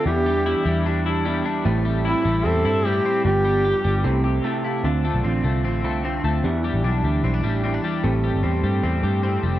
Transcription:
<<
  \new Staff \with { instrumentName = "Duduk" } { \time 4/4 \key d \dorian \tempo 4 = 150 g'2 r2 | r4 e'4 a'4 g'4 | g'2. r4 | r1 |
r1 | r1 | }
  \new Staff \with { instrumentName = "Synth keys" } { \time 4/4 \key d \dorian << { r1 | r1 | r2. a''8 f''8 | r1 |
r1 | r1 | } \\ { <b d' e' g'>1 | <a c' e' g'>1 | <b d' f' g'>2 <a c' e' g'>2 | <c' d' f'>1 |
<d' e' g'>1 | <c' g' a'>1 | } >> }
  \new Staff \with { instrumentName = "Clean electric guitar" } { \time 4/4 \key d \dorian e,8 g8 e'8 g8 d'8 e'8 g8 d'8 | a,8 g8 e'8 g8 c'8 e'8 g8 c'8 | g,8 g8 g'8 g8 c8 g'8 a8 e'8 | d8 a8 c'8 a8 c'8 a8 c'8 a8 |
e,8 g8 d'8 g8 c'16 d'16 g8 c'16 d'16 g8 | a,8 g8 c'8 g8 c'8 g8 c'8 g8 | }
  \new Staff \with { instrumentName = "Clean electric guitar" } { \time 4/4 \key d \dorian <e, b, e g d' e'>8 <e g d' e'>8 <e, b, e g d' e'>8 <e g d' e'>8 <e g d' e'>8 <e g d' e'>8 <e, b, e g d' e'>8 <e g d' e'>8 | <a, e g c' e'>8 <g c' e'>8 <a, e g c' e'>8 <g c' e'>8 <e g c' e'>8 <g c' e'>8 <a, e g c' e'>8 <g c' e'>8 | <g, d f g b g'>8 <f g b g'>8 <g, d f g b g'>8 <f g b g'>8 <e a e' g'>8 <a e' g'>8 <c e a e' g'>8 <a e' g'>8 | <d a c' f'>8 <a c' f'>8 <d a c' f'>8 <a c' f'>8 <d a c' f'>8 <a c' f'>8 <d a c' f'>8 <a c' f'>8 |
<e, b, e g d' e'>8 <e g d' e'>8 <e, b, e g d' e'>8 <e g d' e'>8 <e g d' e'>8 <e g d' e'>8 <e, b, e g d' e'>8 <e g d' e'>8 | <a, e g c' g'>8 <g c' g'>8 <a, e g c' g'>8 <g c' g'>8 <e g c' g'>8 <g c' g'>8 <a, e g c' g'>8 <g c' g'>8 | }
  \new Staff \with { instrumentName = "Picked electric bass" } { \clef bass \time 4/4 \key d \dorian e,4~ e,16 r16 e,2 r8 | a,,4~ a,,16 r16 a,,8 e,8 g,4 r8 | g,,4~ g,,16 r16 g,,8 c,4 r4 | d,8. b,,16 a,,8 c,8 a,,8 c,4 d,8 |
e,8. a,,16 b,,8 d,8 b,,8 a,,4 r8 | a,,8. g,,16 e,8 g,8 e,8 g,4 f,,8 | }
>>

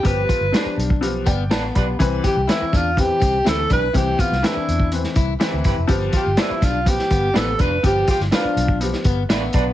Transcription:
<<
  \new Staff \with { instrumentName = "Tenor saxophone" } { \time 4/4 \key g \mixolydian \tempo 4 = 123 b'4. r2 r8 | r8 g'8 e'8 f'8 g'4 a'8 b'8 | g'8 f'8 e'4 r2 | r8 g'8 e'8 f'8 g'4 a'8 b'8 |
g'8 g'8 f'4 r2 | }
  \new Staff \with { instrumentName = "Clean electric guitar" } { \time 4/4 \key g \mixolydian r4 <d' f' b'>8 r4. <d' f' b'>8 <d' f' b'>8 | r4 <e' g' b'>8 r4. <e' g' b'>8 <e' g' b'>8 | r4 <e' g' b'>8 r4. <e' g' b'>8 <e' g' b'>8 | r4 <d' f' b'>8 r4. <d' f' b'>8 <d' f' b'>8 |
r4 <d' f' b'>8 r4. <d' f' b'>8 <d' f' b'>8 | }
  \new Staff \with { instrumentName = "Clean electric guitar" } { \time 4/4 \key g \mixolydian g'8 f'8 d'4 r8 b8 b4 | r8 g'8 e'8 d'8 r8 c'8 c'8 d'8 | c'8 b8 d'4 r8 e'8 e'4 | r8 f'8 e'8 d'8 r8 b8 b8 d'8 |
g'8 f'8 d'4 r8 b8 b4 | }
  \new Staff \with { instrumentName = "Upright piano" } { \time 4/4 \key g \mixolydian r2 r8 <d'' g''>8 <b' a''>8 <g' b''>8~ | <g' b''>8 r2. r8 | r1 | r1 |
r2 r8 b'8 e''8 d''8 | }
  \new Staff \with { instrumentName = "Upright piano" } { \time 4/4 \key g \mixolydian <f b g'>8 r8 <f b g'>8 r8 <f b g'>8 r4. | <e c' b'>8 r8 <e c' b'>8 r8 <e c' b'>8 r8 <e c' b'>8 r8 | <e c' g'>8 r8 <e c' b'>8 r8 <e c' b'>8 r8 <e c' b'>8 r8 | <f b g'>8 r8 <f b g'>8 r8 <f b g'>8 r8 <f b g'>8 r8 |
<f b g'>8 r8 <f b d'>8 r8 <f b g'>8 r4. | }
  \new Staff \with { instrumentName = "Fingered electric bass" } { \clef bass \time 4/4 \key g \mixolydian g,,8 r16 g,,16 r8 b,,4 g,,8 a,,8 b,,8 | c,8 r16 c,16 r8 e,4 c,8 d,8 b,,8 | c,8 r16 c,16 r8 e,4 c,8 r16 d,16 g,,16 f,,16 | g,,8 r16 g,,16 r8 b,,4 g,,8 a,,8 f,,8 |
g,,8 r16 g,,16 r8 b,,4 g,,8 a,,8 b,,8 | }
  \new DrumStaff \with { instrumentName = "Drums" } \drummode { \time 4/4 <hh bd>8 <hh bd>8 <hh sn>8 hh16 bd16 hh8 <hh bd>8 <hh sn>8 <hh bd>8 | <hh bd>8 <hh bd>8 <hh sn>8 <hh bd sn>8 <hh bd>8 <hh bd>8 <hh sn>8 <hh bd>8 | <hh bd>8 <hh bd>16 sn16 <hh sn>8 hh16 bd16 hh16 sn16 <hh bd>8 <hh sn>8 <hh bd>8 | <hh bd>8 <hh bd>8 <hh sn>8 <hh bd sn>8 <hh bd>16 sn16 <hh bd>8 <hh sn>8 <hh bd>8 |
<hh bd>8 <hh bd>16 sn16 <hh sn>8 hh16 bd16 hh16 sn16 <hh bd>8 <hh sn>8 <hh bd>8 | }
>>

